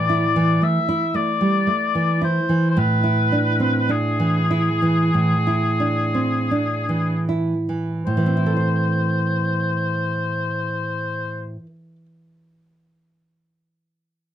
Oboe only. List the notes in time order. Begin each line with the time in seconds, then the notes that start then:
Already playing: D5
0.63 E5
1.15 D5
2.24 C5
2.70 C5
2.78 B4
3.91 G#4
8.06 C5